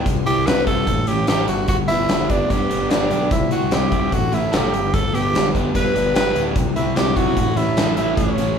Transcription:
0.05 0.23 C2 medium
0.05 0.86 C3 medium
0.05 kick loud
0.05 closed hi-hat medium
0.26 0.43 C2 medium
0.26 0.65 E4 medium
0.26 0.48 G4 loud
0.26 closed hi-hat medium
0.46 0.64 C2 medium
0.46 0.87 C4 medium
0.46 0.66 B4 loud
0.46 snare loud
0.46 closed hi-hat medium
0.67 0.84 C2 medium
0.67 0.87 E4 medium
0.67 1.10 A4 loud
0.67 kick medium
0.67 closed hi-hat medium
0.86 1.05 A1 medium
0.86 1.48 A2 medium
0.86 kick medium
0.86 closed hi-hat medium
1.07 1.25 A1 medium
1.07 1.48 C#4 medium
1.07 1.28 G4 loud
1.07 closed hi-hat medium
1.27 1.45 A1 medium
1.27 1.48 G4 loud
1.27 1.49 A4 medium
1.27 snare loud
1.27 closed hi-hat medium
1.47 1.65 G1 loud
1.47 1.68 G2 medium
1.47 1.67 F#4 medium
1.47 closed hi-hat medium
1.68 1.86 G1 medium
1.68 2.70 G2 medium
1.68 1.78 F#4 loud
1.68 kick loud
1.68 closed hi-hat medium
1.88 2.06 G1 medium
1.88 2.29 B3 medium
1.88 2.31 E4 loud
1.88 closed hi-hat medium
2.08 2.43 G1 medium
2.08 3.12 G3 medium
2.08 snare medium
2.08 closed hi-hat medium
2.30 2.69 B3 medium
2.30 2.52 D4 medium
2.30 kick medium
2.30 closed hi-hat medium
2.50 2.67 G2 medium
2.50 3.11 D4 medium
2.50 2.92 G4 loud
2.50 kick medium
2.50 closed hi-hat medium
2.69 2.87 G1 medium
2.69 3.31 B3 medium
2.69 closed hi-hat medium
2.90 3.08 G1 medium
2.90 3.31 D4 medium
2.90 3.31 G4 medium
2.90 snare loud
2.90 closed hi-hat medium
3.11 3.28 B1 medium
3.11 3.32 D4 medium
3.11 closed hi-hat medium
3.31 3.48 C2 medium
3.31 4.11 C3 medium
3.31 3.51 E4 medium
3.31 kick loud
3.31 closed hi-hat medium
3.51 3.69 C2 medium
3.51 3.90 E4 medium
3.51 3.75 F#4 medium
3.51 closed hi-hat medium
3.71 3.89 C2 medium
3.71 4.12 C4 medium
3.71 4.15 G4 medium
3.71 snare loud
3.71 closed hi-hat medium
3.91 4.09 C2 medium
3.91 4.12 E4 medium
3.91 kick medium
3.91 closed hi-hat medium
4.11 4.30 A1 medium
4.11 4.73 A2 medium
4.11 4.36 F#4 medium
4.11 kick medium
4.11 closed hi-hat medium
4.32 4.50 A1 medium
4.32 4.73 C#4 medium
4.32 4.57 E4 medium
4.32 closed hi-hat medium
4.52 4.70 F#1 medium
4.52 4.96 G4 medium
4.52 4.73 A4 medium
4.52 snare loud
4.52 closed hi-hat medium
4.73 4.90 G1 medium
4.73 4.92 G2 medium
4.73 closed hi-hat medium
4.94 5.11 G1 medium
4.94 5.95 G2 medium
4.94 5.16 A4 loud
4.94 kick loud
4.94 closed hi-hat medium
5.13 5.31 G1 medium
5.13 5.53 B3 medium
5.13 5.48 G4 loud
5.13 closed hi-hat medium
5.34 5.68 G1 loud
5.34 6.35 G3 medium
5.34 snare loud
5.34 closed hi-hat medium
5.54 5.93 B3 medium
5.54 kick medium
5.54 closed hi-hat medium
5.74 5.92 G2 medium
5.74 6.34 D4 medium
5.74 6.13 B4 loud
5.74 kick medium
5.74 closed hi-hat medium
5.95 6.12 G1 medium
5.95 6.55 B3 medium
5.95 closed hi-hat medium
6.15 6.32 G1 medium
6.15 6.55 G4 medium
6.15 6.44 B4 loud
6.15 snare loud
6.15 closed hi-hat medium
6.35 6.57 D1 medium
6.35 6.55 D4 medium
6.35 closed hi-hat medium
6.56 6.73 C2 loud
6.56 7.36 C3 medium
6.56 kick loud
6.56 closed hi-hat medium
6.76 6.93 C2 medium
6.76 7.16 E4 medium
6.76 6.98 E4 medium
6.76 closed hi-hat medium
6.96 7.13 C2 loud
6.96 7.37 C4 medium
6.96 7.17 G4 medium
6.96 snare loud
6.96 closed hi-hat medium
7.16 7.37 B1 medium
7.16 7.56 E4 medium
7.16 7.59 F#4 medium
7.16 kick medium
7.16 closed hi-hat medium
7.36 7.54 A1 medium
7.36 8.17 A2 medium
7.36 kick medium
7.36 closed hi-hat medium
7.56 7.74 A1 medium
7.56 8.38 C#4 medium
7.56 7.96 E4 loud
7.56 closed hi-hat medium
7.77 7.94 A1 loud
7.77 8.59 A4 medium
7.77 snare loud
7.77 closed hi-hat medium
7.97 8.15 A1 medium
7.97 8.16 E4 medium
7.97 8.59 E4 medium
7.97 closed hi-hat medium
8.17 8.34 A1 loud
8.17 8.59 A2 medium
8.17 8.59 C#4 medium
8.17 kick loud
8.17 closed hi-hat medium
8.38 8.55 A1 medium
8.38 8.59 C#4 medium
8.38 closed hi-hat medium

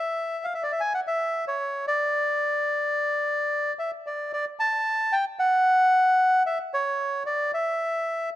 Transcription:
0.00 0.46 E5 medium
0.44 0.53 F5 medium
0.54 0.63 E5 medium
0.63 0.72 D5 medium
0.72 0.81 E5 medium
0.81 0.93 G#5 medium
0.94 1.00 F#5 medium
1.07 1.45 E5 medium
1.48 1.85 C#5 medium
1.88 3.73 D5 medium
3.79 3.91 E5 medium
4.07 4.32 D5 medium
4.33 4.45 D5 medium
4.60 5.15 A5 medium
5.12 5.25 G5 medium
5.39 6.43 F#5 medium
6.46 6.58 E5 medium
6.74 7.23 C#5 medium
7.26 7.51 D5 medium
7.54 8.30 E5 medium

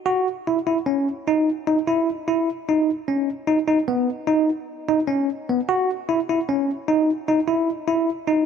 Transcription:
0.06 0.27 F#4 medium
0.47 0.58 E4 medium
0.67 0.77 E4 medium
0.86 1.07 C#4 medium
1.28 1.49 D#4 medium
1.67 1.78 D#4 medium
1.88 2.08 E4 medium
2.28 2.49 E4 medium
2.69 2.89 D#4 medium
3.08 3.29 C#4 medium
3.47 3.58 D#4 medium
3.68 3.78 D#4 medium
3.88 4.09 B3 medium
4.27 4.48 D#4 medium
4.89 4.99 D#4 medium
5.08 5.29 C#4 medium
5.49 5.60 B3 medium
5.69 5.90 F#4 medium
6.09 6.19 E4 medium
6.29 6.40 E4 medium
6.49 6.70 C#4 medium
6.88 7.09 D#4 medium
7.28 7.39 D#4 medium
7.48 7.69 E4 medium
7.87 8.09 E4 medium
8.27 8.46 D#4 medium

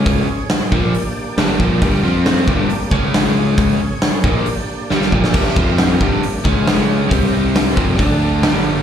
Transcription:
0.00 0.24 C#2 medium
0.00 0.27 C#3 medium
0.00 0.27 G#3 medium
0.00 0.28 C#4 medium
0.00 0.71 C#4 medium
0.00 0.71 G#4 medium
0.00 0.70 C#5 medium
0.06 kick loud
0.06 open hi-hat medium
0.49 snare loud
0.49 open hi-hat medium
0.71 0.92 A#1 loud
0.71 0.93 A#2 medium
0.71 0.94 F3 medium
0.71 2.03 A#3 medium
0.71 0.94 A#3 loud
0.71 2.02 D4 medium
0.71 2.02 G4 medium
0.71 2.02 D5 medium
0.71 kick loud
0.93 muted fingered electric bass stroke soft
0.93 muted overdriven electric guitar stroke medium
0.93 open hi-hat medium
1.37 1.58 G1 medium
1.37 1.59 G2 medium
1.37 1.60 D3 medium
1.37 1.60 G3 medium
1.37 snare loud
1.37 open hi-hat medium
1.60 1.80 A#1 medium
1.60 1.81 A#2 medium
1.60 1.82 F3 medium
1.60 1.82 A#3 medium
1.60 kick medium
1.82 2.02 G1 medium
1.82 2.03 G2 medium
1.82 2.03 D3 loud
1.82 2.04 G3 loud
1.82 kick loud
1.82 open hi-hat medium
2.03 2.44 F2 medium
2.03 2.47 F3 medium
2.03 2.48 C4 medium
2.03 2.48 F4 medium
2.03 2.48 F4 loud
2.03 2.48 C5 medium
2.26 snare loud
2.26 open hi-hat medium
2.47 2.68 G1 medium
2.47 2.69 G2 medium
2.47 2.70 D3 medium
2.47 2.70 G3 loud
2.47 2.92 A#3 medium
2.47 2.92 D4 medium
2.47 2.92 G4 medium
2.47 2.92 D5 medium
2.47 kick loud
2.69 muted overdriven electric guitar stroke medium
2.69 muted fingered electric bass stroke soft
2.69 open hi-hat medium
2.90 3.76 C#2 medium
2.90 3.79 C#3 medium
2.90 3.79 G#3 medium
2.90 4.22 C#4 medium
2.90 3.80 C#4 medium
2.90 4.22 G#4 medium
2.90 4.22 C#5 medium
2.90 kick medium
3.14 snare loud
3.14 open hi-hat medium
3.58 kick loud
3.58 open hi-hat medium
4.02 snare loud
4.02 open hi-hat medium
4.24 4.45 A#1 loud
4.24 4.45 A#2 medium
4.24 4.46 F3 medium
4.24 4.46 A#3 medium
4.24 4.39 B3 medium
4.24 4.39 D#4 medium
4.24 4.39 G#4 medium
4.24 4.39 D#5 medium
4.24 kick loud
4.40 5.56 A#3 medium
4.40 5.56 D4 medium
4.40 5.56 G4 medium
4.40 5.56 D5 medium
4.46 muted fingered electric bass stroke soft
4.46 muted overdriven electric guitar stroke medium
4.46 open hi-hat medium
4.90 5.11 G1 medium
4.90 5.12 G2 medium
4.90 5.12 D3 medium
4.90 5.12 G3 medium
4.90 snare medium
5.01 snare medium
5.12 5.33 A#1 medium
5.12 5.34 A#2 medium
5.12 5.34 F3 medium
5.12 5.34 A#3 medium
5.12 kick medium
5.24 snare medium
5.34 5.55 G1 medium
5.34 5.56 G2 medium
5.34 5.56 D3 medium
5.34 5.56 G3 loud
5.34 kick loud
5.34 open hi-hat medium
5.34 crash medium
5.56 5.98 F2 medium
5.56 6.00 F3 medium
5.56 6.01 C4 loud
5.56 6.01 C4 medium
5.56 6.01 F4 medium
5.56 6.01 F4 loud
5.56 6.01 C5 medium
5.56 kick loud
5.78 snare loud
5.78 open hi-hat medium
6.00 6.21 G1 loud
6.00 6.21 G2 medium
6.00 6.23 D3 medium
6.00 6.23 G3 medium
6.00 6.45 A#3 medium
6.00 6.45 D4 medium
6.00 6.45 G4 medium
6.00 6.45 D5 medium
6.00 kick medium
6.22 muted fingered electric bass stroke soft
6.22 muted overdriven electric guitar stroke medium
6.22 open hi-hat medium
6.44 7.07 C#2 medium
6.44 7.08 C#3 medium
6.44 7.09 G#3 medium
6.44 7.10 C#4 medium
6.44 7.11 C#4 medium
6.44 7.10 G#4 medium
6.44 7.11 C#5 medium
6.44 kick loud
6.67 snare loud
6.67 open hi-hat medium
7.09 7.73 C2 medium
7.09 7.75 C3 medium
7.09 7.76 G3 loud
7.09 7.76 C4 medium
7.09 7.77 C4 medium
7.09 7.77 G4 medium
7.09 7.77 C5 medium
7.09 kick loud
7.09 open hi-hat medium
7.55 snare loud
7.55 open hi-hat medium
7.76 7.97 F1 medium
7.76 7.98 F2 medium
7.76 7.99 C3 medium
7.76 7.99 F3 loud
7.76 kick medium
7.98 8.40 D2 medium
7.98 8.42 D3 medium
7.98 8.42 A3 loud
7.98 8.43 D4 loud
7.98 8.42 D4 medium
7.98 8.43 A4 medium
7.98 8.43 D5 medium
7.98 kick loud
7.98 open hi-hat medium
8.42 8.82 G1 loud
8.42 8.82 G2 medium
8.42 8.82 D3 medium
8.42 8.82 G3 medium
8.42 8.82 A#3 medium
8.42 8.82 D4 medium
8.42 8.82 G4 medium
8.42 8.82 D5 medium
8.42 snare loud
8.42 open hi-hat medium

